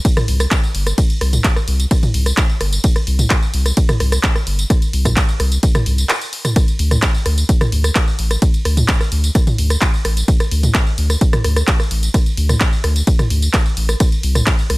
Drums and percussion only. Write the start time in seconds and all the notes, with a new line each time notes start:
0.05 kick, closed hi-hat, ride, tambourine
0.17 cross-stick, closed hi-hat, mid tom, tambourine
0.28 open hi-hat
0.40 cross-stick, closed hi-hat, tambourine
0.51 kick, cross-stick, clap, closed hi-hat, ride, tambourine
0.64 tambourine
0.75 open hi-hat
0.87 cross-stick, closed hi-hat, tambourine
0.98 kick, closed hi-hat, ride, tambourine
1.10 closed hi-hat, tambourine
1.21 cross-stick, open hi-hat
1.33 closed hi-hat, mid tom, tambourine
1.44 kick, clap, closed hi-hat, ride, tambourine
1.56 cross-stick, tambourine
1.68 open hi-hat
1.80 closed hi-hat, tambourine
1.91 kick, cross-stick, closed hi-hat, ride, tambourine
2.03 closed hi-hat, mid tom, tambourine
2.14 open hi-hat
2.26 cross-stick, closed hi-hat, tambourine
2.37 kick, clap, closed hi-hat, ride, tambourine
2.49 tambourine
2.61 cross-stick, open hi-hat
2.73 closed hi-hat, tambourine
2.84 kick, closed hi-hat, ride, tambourine
2.96 cross-stick, closed hi-hat, tambourine
3.07 open hi-hat
3.19 closed hi-hat, mid tom, tambourine
3.30 kick, cross-stick, clap, closed hi-hat, ride, tambourine
3.42 tambourine
3.54 open hi-hat
3.66 cross-stick, closed hi-hat, tambourine
3.77 kick, closed hi-hat, ride, tambourine
3.89 cross-stick, closed hi-hat, mid tom, tambourine
4.00 cross-stick, open hi-hat
4.12 cross-stick, closed hi-hat, tambourine
4.23 kick, clap, closed hi-hat, ride, tambourine
4.35 cross-stick, tambourine
4.47 open hi-hat
4.59 closed hi-hat, tambourine
4.70 kick, cross-stick, closed hi-hat, ride, tambourine
4.82 closed hi-hat, tambourine
4.93 open hi-hat
5.05 kick, cross-stick, closed hi-hat, mid tom, tambourine
5.17 kick, clap, closed hi-hat, ride, tambourine
5.29 tambourine
5.40 cross-stick, open hi-hat
5.52 closed hi-hat, tambourine
5.63 kick, closed hi-hat, ride, tambourine
5.75 cross-stick, closed hi-hat, mid tom, tambourine
5.86 open hi-hat
5.98 closed hi-hat, tambourine
6.09 cross-stick, clap, closed hi-hat, ride, tambourine
6.21 closed hi-hat, tambourine
6.33 open hi-hat
6.45 cross-stick, closed hi-hat, mid tom, tambourine
6.56 kick, cross-stick, closed hi-hat, ride, tambourine
6.68 closed hi-hat, tambourine
6.79 open hi-hat
6.91 cross-stick, closed hi-hat, mid tom, tambourine
7.02 kick, clap, closed hi-hat, ride, tambourine
7.15 tambourine
7.26 cross-stick, open hi-hat
7.38 closed hi-hat, tambourine
7.49 kick, closed hi-hat, ride, tambourine
7.61 cross-stick, closed hi-hat, mid tom, tambourine
7.72 open hi-hat
7.84 cross-stick, closed hi-hat, tambourine
7.95 kick, cross-stick, clap, closed hi-hat, ride, tambourine
8.08 tambourine
8.19 open hi-hat
8.31 cross-stick, closed hi-hat, tambourine
8.42 kick, closed hi-hat, ride, tambourine
8.54 closed hi-hat, tambourine
8.65 cross-stick, open hi-hat
8.77 closed hi-hat, mid tom, tambourine
8.88 kick, clap, closed hi-hat, ride
9.01 cross-stick, tambourine
9.12 open hi-hat
9.24 closed hi-hat, tambourine
9.35 kick, cross-stick, closed hi-hat, ride, tambourine
9.47 closed hi-hat, mid tom, tambourine
9.58 open hi-hat
9.70 cross-stick, closed hi-hat, tambourine
9.82 kick, clap, closed hi-hat, ride
9.94 tambourine
10.05 cross-stick, open hi-hat
10.17 closed hi-hat, tambourine
10.28 kick, closed hi-hat, ride, tambourine
10.40 cross-stick, closed hi-hat, tambourine
10.51 open hi-hat
10.63 closed hi-hat, mid tom, tambourine
10.75 kick, cross-stick, clap, closed hi-hat, ride, tambourine
10.87 tambourine
10.98 open hi-hat
11.10 cross-stick, closed hi-hat, tambourine
11.21 kick, closed hi-hat, ride, tambourine
11.33 cross-stick, closed hi-hat, mid tom, tambourine
11.44 cross-stick, open hi-hat
11.56 cross-stick, closed hi-hat, tambourine
11.68 kick, clap, closed hi-hat, ride, tambourine
11.80 cross-stick, tambourine
11.91 open hi-hat
12.03 closed hi-hat, tambourine
12.14 kick, cross-stick, closed hi-hat, ride, tambourine
12.26 closed hi-hat, tambourine
12.37 open hi-hat
12.49 cross-stick, closed hi-hat, mid tom, tambourine
12.61 kick, clap, closed hi-hat, ride, tambourine
12.73 tambourine
12.84 cross-stick, open hi-hat
12.96 closed hi-hat, tambourine
13.07 kick, closed hi-hat, ride, tambourine
13.19 cross-stick, closed hi-hat, mid tom, tambourine
13.30 open hi-hat
13.42 closed hi-hat, tambourine
13.54 kick, cross-stick, clap, closed hi-hat, ride
13.66 tambourine
13.77 open hi-hat
13.89 cross-stick, closed hi-hat, tambourine
14.00 kick, cross-stick, closed hi-hat, ride, tambourine
14.12 closed hi-hat, tambourine
14.23 open hi-hat
14.35 cross-stick, closed hi-hat, mid tom, tambourine
14.47 kick, clap, closed hi-hat, ride, tambourine
14.59 tambourine
14.70 cross-stick, open hi-hat